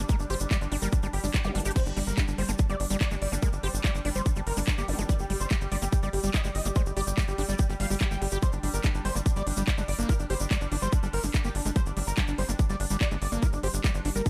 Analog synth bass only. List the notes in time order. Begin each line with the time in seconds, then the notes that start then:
0.20 G1
0.30 G1
0.40 G1
0.61 G1
0.72 G1
0.82 G1
1.03 G1
1.13 G1
1.24 G1
1.45 G1
1.55 G1
1.65 G1
1.86 G1
1.97 G1
2.07 G1
2.28 G1
2.38 G1
2.49 G1
2.70 G1
2.80 G1
2.90 G1
3.11 G1
3.22 G1
3.32 G1
3.53 G1
3.63 G1
3.74 G1
3.95 G1
4.05 G1
4.15 G1
4.36 G1
4.47 G1
4.57 G1
4.78 G1
4.88 G1
4.99 G1
5.20 G1
5.30 G1
5.40 G1
5.61 G1
5.72 G1
5.82 G1
6.03 G1
6.13 G1
6.24 G1
6.45 G1
6.55 G1
6.65 G1
6.86 G1
6.97 G1
7.07 G1
7.28 G1
7.38 G1
7.49 G1
7.70 G1
7.80 G1
7.90 G1
8.11 G1
8.22 G1
8.32 G1
8.53 G1
8.63 G1
8.74 G1
8.95 G1
9.05 G1
9.15 G1
9.36 G1
9.47 G1
9.57 G1
9.78 G1
9.88 G1
9.99 G1
10.20 G1
10.30 G1
10.40 G1
10.61 G1
10.72 G1
10.82 G1
11.03 G1
11.13 G1
11.24 G1
11.45 G1
11.55 G1
11.65 G1
11.86 G1
11.97 G1
12.07 G1
12.28 G1
12.38 G1
12.49 G1
12.70 G1
12.80 G1
12.90 G1
13.11 G1
13.22 G1
13.32 G1
13.53 G1
13.63 G1
13.74 G1
13.95 G1
14.05 G1
14.15 G1